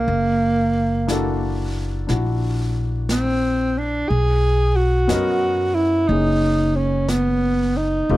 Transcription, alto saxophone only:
0.00 1.78 A#3 medium
3.12 3.80 C4 medium
3.78 4.10 D4 medium
4.09 4.78 G#4 loud
4.76 5.76 F#4 medium
5.75 6.10 E4 medium
6.08 6.77 D#4 medium
6.76 7.11 C#4 medium
7.09 7.78 B3 medium
7.77 8.17 D#4 medium

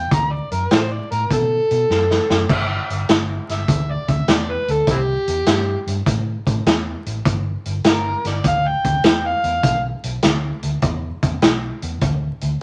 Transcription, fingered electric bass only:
0.11 0.39 D2 medium
0.52 0.65 F#2 medium
0.71 0.99 A2 medium
1.12 1.25 A2 medium
1.31 1.59 B2 medium
1.71 1.84 B2 medium
1.90 2.18 F#2 medium
2.30 2.44 F#2 medium
2.49 2.77 G1 medium
2.90 3.03 G1 medium
3.09 3.37 G1 medium
3.50 3.63 G1 medium
3.68 3.96 D2 medium
4.09 4.22 D2 medium
4.28 4.56 E2 medium
4.68 4.82 D2 medium
4.87 5.16 C2 medium
5.28 5.41 E2 medium
5.47 5.75 G2 medium
5.87 6.01 G2 medium
6.07 6.35 A2 medium
6.47 6.60 A2 medium
6.66 6.94 E2 medium
7.06 7.20 A1 medium
7.26 7.54 G1 medium
7.66 7.79 G1 medium
7.85 8.13 G1 medium
8.25 8.39 G1 medium
8.45 8.73 D2 medium
8.85 8.98 D2 medium
9.05 9.33 E2 medium
9.44 9.58 E2 medium
9.64 9.92 B1 medium
10.04 10.18 B1 medium
10.23 10.51 D2 medium
10.63 10.77 D2 medium
10.83 11.11 E2 medium
11.23 11.36 E2 medium
11.42 11.70 B1 medium
11.83 11.96 E2 medium
12.02 12.30 D2 medium
12.42 12.56 D2 medium

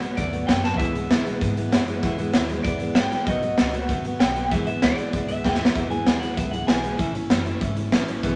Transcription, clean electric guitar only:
0.17 0.47 D5 medium
0.47 0.63 G5 loud
0.64 0.77 A5 medium
0.78 1.38 E5 loud
2.63 2.94 D5 medium
2.95 3.10 G5 loud
3.11 3.26 G5 medium
3.27 3.87 D#5 loud
4.20 4.50 G5 loud
4.51 4.66 E5 loud
4.67 4.82 E5 medium
4.83 5.28 D5 loud
5.28 5.44 E5 medium
5.45 5.58 G5 medium
5.58 5.74 E5 loud
5.90 6.20 G#5 medium
6.20 6.37 F#5 medium
6.37 6.51 E5 medium
6.51 6.67 F#5 medium
6.67 7.28 G#5 medium

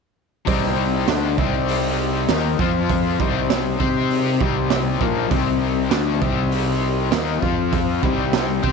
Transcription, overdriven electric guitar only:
0.47 1.06 C3 medium
0.47 1.07 G3 loud
0.47 1.07 C4 loud
1.08 1.37 D3 medium
1.08 1.37 A3 medium
1.08 1.38 D4 loud
1.38 2.28 C3 medium
1.38 2.28 G3 medium
1.38 2.28 C4 medium
2.29 2.58 D#3 medium
2.29 2.58 A#3 medium
2.29 2.59 D#4 medium
2.60 3.19 F3 medium
2.60 3.19 C4 medium
2.60 3.20 F4 loud
3.20 3.79 C3 medium
3.20 3.79 G3 loud
3.20 3.78 C4 medium
3.80 4.39 C4 loud
3.80 4.40 G4 medium
3.80 4.40 C5 loud
4.40 5.00 C3 medium
4.40 5.00 G3 loud
4.40 5.00 C4 loud
5.01 5.29 A#2 medium
5.01 5.30 F3 medium
5.01 5.31 A#3 loud
5.30 5.90 C3 medium
5.30 5.90 G3 medium
5.30 5.91 C4 loud
5.90 6.20 D3 medium
5.90 6.21 A3 medium
5.90 6.21 D4 loud
6.21 7.11 C3 medium
6.21 7.12 G3 medium
6.21 7.12 C4 medium
7.12 7.42 D#3 loud
7.12 7.42 A#3 loud
7.12 7.43 D#4 loud
7.42 8.02 F3 medium
7.42 8.02 C4 medium
7.42 8.02 F4 medium
8.02 8.62 C3 medium
8.02 8.63 G3 medium
8.02 8.62 C4 loud
8.63 8.72 C4 medium
8.63 8.72 G4 loud
8.63 8.72 C5 medium

